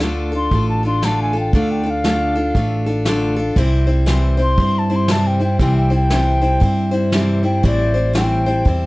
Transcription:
Already playing: D2
0.00 D3 A3 D4 F4 A4, snare
0.32 D4 F4 A4
0.36 C6
0.51 A1 A3 D4 F4 A4, kick
0.69 A5
0.83 D4 F4 A4 C6
1.02 D3 A3 D4 F4 A4 A5, snare
1.22 G#5
1.33 D4 F4 A4
1.40 G5
1.53 D2 D3 A3 D4 F4 A4 F5, kick
1.71 G5
1.83 D4 F4 A4
1.90 F5
2.04 D3 A3 D4 F4 A4, snare
2.35 D4 F4 A4
2.55 A1 A3 D4 F4 A4, kick
2.86 D4 F4 A4
3.05 D3 A3 D4 F4 A4, snare
3.36 D4 F4 A4
3.56 C2 C3 E3 G3 C4 E4 C5, kick
3.87 G3 C4 E4 C5
4.06 C3 E3 G3 C4 E4 C5, snare
4.37 G3 C4 E4 C5
4.42 C6
4.58 G2 G3 C4 E4 C5, kick
4.79 A5
4.90 G3 C4 E4 C5
4.96 C6
5.08 C3 E3 G3 C4 E4 C5 A5, snare
5.27 G5
5.39 G3 C4 E4 C5
5.44 G5
5.59 C2 C3 E3 G3 C4 E4 C5 G5, kick
5.77 G5
5.90 G3 C4 E4 C5
5.95 G5
6.10 C3 E3 G3 C4 E4 C5, snare
6.42 G3 C4 E4 C5
6.60 G2 G3 C4 E4 C5, kick
6.91 G3 C4 E4 C5
7.12 C3 E3 G3 C4 E4 C5, snare
7.43 G3 C4 E4 C5 G5
7.63 A1 A2 E3 G3 C4 E4 C5 D5, kick
7.94 G3 C4 E4 C5
8.13 A2 E3 G3 C4 E4 C5 G5, snare
8.46 G3 C4 E4 C5
8.65 E2 G3 C4 E4 C5, kick

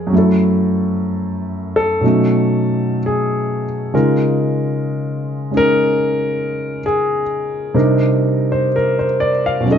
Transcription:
Already playing: F2 F3 G#3 D#4 G#4 G5
0.07 F#2 F#3
0.13 A3 E4
0.18 A4
1.76 A4
2.01 B2 F#3 C#4 D#4
2.06 A3
3.06 G#4
3.94 C#3 G#3 D#4 F4 A#4
5.51 G#3 C#4 D#4 G#4
5.57 A#4
6.86 G#4
7.74 C3 G3 D4 D#4 A#4
8.52 C5
8.76 A#4
8.99 C5
9.20 D5
9.46 F5
9.60 B2 F#3
9.66 C#4 D#4
9.71 A4 D#5

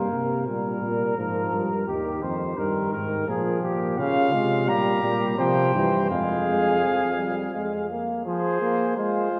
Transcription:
Already playing: A#3 A#4
0.11 C3
0.47 A#2 G3 A#4
0.82 A#2
1.17 G#2 F3
1.52 G2
1.87 D#2 D#3 G4
2.23 F2 C5
2.58 G2 D#3 A#4
2.92 G#2 A#4
3.28 A#2 F3 G#4
3.63 A#2 G4
3.98 C#3 F4 F5
4.32 C3 G#3
4.68 A#2 G3 G4 A#5
5.03 A#2 G3
5.38 C3 F3 C5 G5
5.75 G2 E3
6.10 F2 G#3 G#4 F5
6.47 G#3
6.83 F3
7.18 G3
7.55 G#3
7.91 A#3
8.26 F3 G#4 C5
8.62 A#3
8.97 G#3 F4 C5
9.32 G#3

